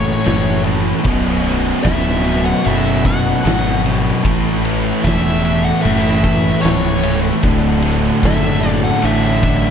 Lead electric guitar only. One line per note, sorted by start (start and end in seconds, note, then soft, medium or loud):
0.00 0.61 C#5 medium
1.83 2.45 E5 medium
2.45 2.64 F#5 loud
2.67 3.03 E5 medium
3.06 3.81 F#5 loud
5.04 5.64 E5 medium
5.65 5.82 F#5 loud
5.82 6.65 E5 loud
6.61 7.18 C#5 medium
8.26 8.68 E5 medium
8.68 8.81 D5 medium
8.84 9.02 F#5 loud
9.05 9.70 E5 medium